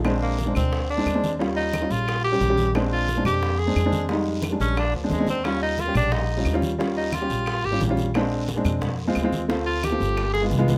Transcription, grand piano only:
X:1
M:4/4
L:1/16
Q:1/4=178
K:Bbmix
V:1 name="Grand piano"
[A,CD]4 z [A,CD]4 z2 [A,CD] z [A,CD]2 z | [G,_DF]4 z [G,DF]4 z2 [G,DG] z [G,DG]2 z | [A,CD]4 z [A,CD]4 z2 [A,CD] z [A,CD]2 z | [G,A,E]4 z [G,A,D]3 z3 [A,CD] z [A,CD]2 z |
[G,_DF]4 z [G,DG]4 z2 [G,DF] z [G,DF]2 z | [G,_DF]4 z [G,DG]4 z2 [G,DF] z [G,DF]2 z | [A,CD]4 z [A,CD]4 z2 [A,CF] z [A,CF]2 z | [=A,CF]4 z [A,CF]3 z3 [_A,=B,F] z [A,B,F]2 z |]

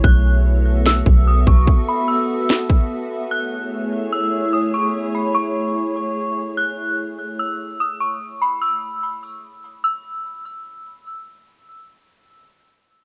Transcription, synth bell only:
X:1
M:4/4
L:1/8
Q:1/4=147
K:Alyd
V:1 name="Synth bell"
f'2 z2 e'2 d' c' | z b e'2 z4 | f'2 z2 e'2 d' c' | z b c'6 |
f'2 z2 e'2 d' c' | z b e'2 z4 | e'6 z2 | z8 |]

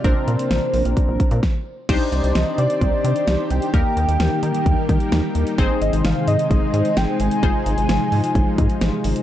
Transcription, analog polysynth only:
X:1
M:4/4
L:1/8
Q:1/4=130
K:Cm
V:1 name="Analog polysynth"
[CDB]6 z2 | [DEGc]8 | [B,EGB]8 | [CEAc]8 |
[EFAc]8 |]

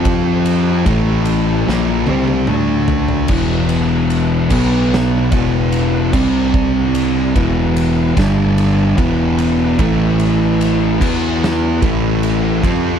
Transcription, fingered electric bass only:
X:1
M:4/4
L:1/8
Q:1/4=74
K:Em
V:1 name="Fingered electric bass" clef=bass
=F,,2 A,,,2 ^A,,, C,, D,,2 | E,,,3 B,,,2 E,,,2 C,,- | C,,2 E,,,2 G,,,2 E,,,2 | A,,,3 E,,2 A,,,2 =F,, |]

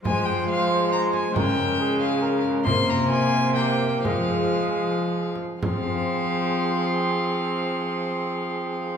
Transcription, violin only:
X:1
M:3/4
L:1/8
Q:1/4=122
K:Fm
V:1 name="Violin"
a g f2 b a | g3 f2 z | c' b a2 g2 | f4- f z |
f6- | f6 |]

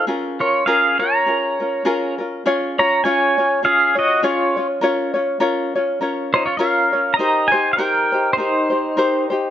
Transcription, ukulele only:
X:1
M:4/4
L:1/8
Q:"Swing" 1/4=101
K:Bbm
V:1 name="Ukulele"
[DFAB] [DFB] [DFAB] [DFB] [DFAB] [DFB] [DFAB] [DFB] | [K:Db] [DFAd] [DFd] [DFAd] [DFd] [DFAd] [DFd] [DFAd] [DFd] | [DFBd] [DFd] [DFBd] [DFd] [DFBd] [DFd] [DFBd] [DFd] | [E=GBc] [EGc] [EGBc] [EGc] [EGBc] [EGc] [EGBc] [EGc] |]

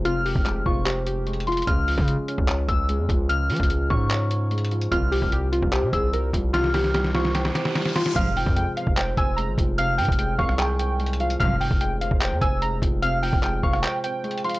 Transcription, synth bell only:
X:1
M:4/4
L:1/8
Q:1/4=148
K:Fm
V:1 name="Synth bell"
f'3 d' z3 c' | f'2 z3 =e' z2 | f'3 d'3 z2 | f'2 z3 =e' z2 |
f'3 d' z3 c' | f'2 z3 =e' z2 | f'3 d'3 z2 | f'2 z3 =e' z2 |
f'3 d' z3 c' |]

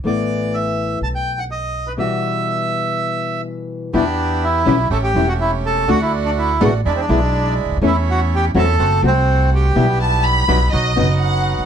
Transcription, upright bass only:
X:1
M:4/4
L:1/16
Q:1/4=124
K:Em
V:1 name="Upright bass" clef=bass
A,,,6- A,,,3/2 z/2 B,,,6- B,,,3/2 z/2 | z16 | E,,4- E,,3/2 z/2 B,,,3/2 z/2 A,,,3/2 z/2 E,,,4- E,,,3/2 z/2 | D,,4- D,,3/2 z/2 A,,,3/2 z/2 E,,3/2 z/2 B,,,4- B,,,/2 ^C,,/2 D,,/2 ^D,,/2 |
E,,4- E,,3/2 z/2 E,,3/2 z/2 F,,,3/2 z/2 C,,4- C,,3/2 z/2 | B,,,4- B,,,3/2 z/2 B,,,3/2 z/2 B,,,3/2 z/2 F,,,4- F,,,/2 ^C,,/2 D,,/2 z/2 |]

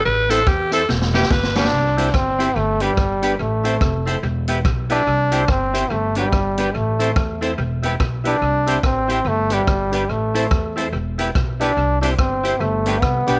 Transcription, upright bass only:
X:1
M:4/4
L:1/8
Q:"Swing" 1/4=143
K:Am
V:1 name="Upright bass" clef=bass
A,,,2 E,,2 E,,,2 G,,,2 | C,,2 G,,,2 G,,,2 G,,,2 | A,,,2 F,,,2 E,,,2 B,,,2 | C,,2 G,,,2 G,,,2 G,,,2 |
A,,,2 E,,2 E,,,2 B,,,2 | C,,2 A,,,2 G,,,2 G,,,2 | A,,,2 E,,2 E,,,2 B,,,2 | C,,2 G,,,2 G,,,2 C,, B,,, |]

